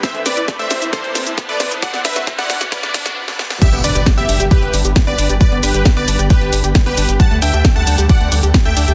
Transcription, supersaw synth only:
X:1
M:4/4
L:1/16
Q:1/4=134
K:G
V:1 name="Supersaw synth"
[ce]2 [Bd]2 z [ce]2 z [Ac]2 z3 [Bd]2 z | [df]2 [Be]2 z [df]2 z [Bd]2 z6 | [Ge]2 [Bd]2 z [Ge]2 z [GB]2 z3 [Bd]2 z | [Bd]2 [GB]2 z [Bd]2 z [GB]2 z3 [GB]2 z |
[fa]2 [eg]2 z [fa]2 z [df]2 z3 [eg]2 z |]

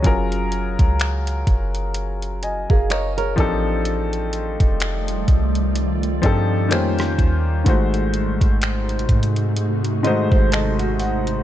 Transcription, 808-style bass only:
X:1
M:4/4
L:1/16
Q:"Swing 16ths" 1/4=63
K:Abdor
V:1 name="808-style bass" clef=bass
G,,,3 D,,3 G,,,4- G,,, G,,,3 =A,,,2- | =A,,,3 F,,,3 =C,,4 =G,,2 F,,2 E,,2 | A,,,3 A,,,3 A,,4- A,, A,,,4- A,,, |]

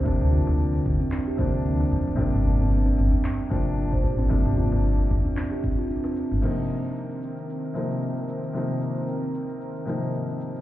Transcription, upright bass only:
X:1
M:4/4
L:1/16
Q:"Swing 16ths" 1/4=113
K:Cm
V:1 name="Upright bass" clef=bass
z D,, z D,,2 z D,, z3 D,,3 z F,, G,,, | z G,,, z G,,,2 z G,,, z3 G,,,3 z B,,, G,,, | z G,,, z G,,,2 z G,,, z8 G,,, | z16 |
z16 |]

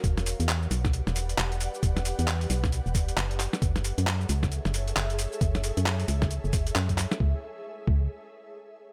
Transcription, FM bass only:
X:1
M:4/4
L:1/16
Q:"Swing 16ths" 1/4=134
K:C#m
V:1 name="FM bass" clef=bass
E,,,3 E,,3 B,,,3 E,,,3 E,,,3 z | E,,,3 E,,3 B,,,3 E,,,3 F,,,3 z | F,,,3 F,,3 C,,3 F,,,3 F,,,3 z | F,,,3 F,,3 C,,3 F,,,3 F,,3 z |
C,, z4 z C,,2 z8 |]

